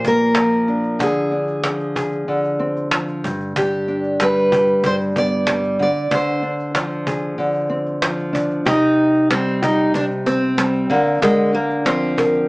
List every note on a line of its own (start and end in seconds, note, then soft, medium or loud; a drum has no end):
0.00 1.07 A#2 medium
0.00 0.37 F3 medium
0.00 0.68 D4 medium
0.00 1.07 G4 medium
0.05 1.08 A#3 medium
0.05 1.05 A#4 loud
0.05 cajon bass medium
0.35 1.63 F3 medium
0.35 cajon slap loud
0.52 cajon slap soft
0.68 1.31 D4 medium
0.68 cajon slap soft
0.84 cajon slap soft
0.99 2.28 D3 medium
0.99 2.89 G#4 medium
0.99 cajon bass loud
1.15 cajon slap soft
1.31 3.88 D4 medium
1.31 cajon slap soft
1.48 cajon slap soft
1.64 2.90 F3 medium
1.64 cajon slap loud
1.80 cajon slap soft
1.96 3.30 G#4 medium
1.96 cajon bass medium
2.12 cajon slap soft
2.28 5.78 D3 medium
2.28 cajon slap soft
2.44 cajon slap soft
2.59 3.30 C4 medium
2.77 cajon slap soft
2.91 3.30 F3 medium
2.91 cajon slap loud
3.08 cajon slap soft
3.24 3.55 G2 medium
3.24 cajon bass medium
3.41 cajon slap soft
3.56 4.84 G2 medium
3.56 4.23 G4 medium
3.56 cajon bass loud
3.72 cajon slap soft
3.88 6.42 D4 medium
3.88 cajon slap soft
4.04 cajon slap soft
4.20 5.48 G3 medium
4.20 4.86 B4 medium
4.20 cajon slap loud
4.36 cajon slap soft
4.52 5.86 G4 medium
4.52 cajon bass medium
4.67 cajon slap soft
4.84 5.87 G2 medium
4.84 4.94 C5 loud
4.84 cajon bass medium
5.00 cajon slap soft
5.16 5.86 B3 medium
5.16 5.77 D5 loud
5.16 cajon bass medium
5.32 cajon slap soft
5.47 5.87 G3 medium
5.47 cajon slap loud
5.64 cajon slap soft
5.79 6.10 D3 medium
5.79 6.11 D5 loud
5.79 cajon slap soft
5.96 cajon slap soft
6.11 7.37 D3 medium
6.11 8.01 C5 medium
6.11 cajon bass loud
6.42 8.32 D4 medium
6.42 cajon slap soft
6.60 cajon slap soft
6.75 8.01 F3 medium
6.75 cajon slap loud
6.91 cajon slap soft
7.07 8.66 G#4 medium
7.07 cajon bass medium
7.22 cajon slap soft
7.38 8.65 D3 medium
7.38 cajon slap soft
7.55 cajon slap soft
7.69 10.26 C4 medium
7.87 cajon slap soft
8.02 8.73 F3 medium
8.02 cajon slap loud
8.19 cajon slap soft
8.33 8.72 D4 medium
8.33 cajon bass medium
8.51 cajon slap soft
8.65 9.93 C3 medium
8.65 9.31 D#4 loud
8.65 9.61 G4 medium
8.65 cajon bass loud
8.82 cajon slap soft
8.99 cajon slap soft
9.15 cajon slap soft
9.30 10.56 G3 medium
9.30 9.63 C4 loud
9.30 cajon slap loud
9.47 cajon slap soft
9.62 9.93 D#4 medium
9.62 10.96 G4 medium
9.62 cajon bass loud
9.79 cajon slap soft
9.94 10.89 C3 medium
9.94 10.04 D4 loud
9.94 cajon bass medium
10.11 cajon slap soft
10.26 10.92 C4 loud
10.26 11.25 C4 medium
10.26 cajon bass medium
10.43 cajon slap soft
10.57 10.96 G3 medium
10.57 cajon slap loud
10.75 cajon slap soft
10.90 11.21 D3 medium
10.90 11.23 A#3 medium
10.90 cajon slap soft
11.07 cajon slap soft
11.22 12.48 D3 medium
11.22 11.52 G#3 medium
11.22 12.17 A#4 medium
11.22 cajon bass loud
11.38 cajon slap soft
11.53 11.84 A#3 medium
11.53 12.48 D4 medium
11.70 cajon slap soft
11.85 12.48 F3 medium
11.85 12.48 C4 medium
11.85 cajon slap loud
12.02 cajon slap soft
12.17 12.48 A#4 medium
12.17 cajon bass loud
12.34 cajon slap soft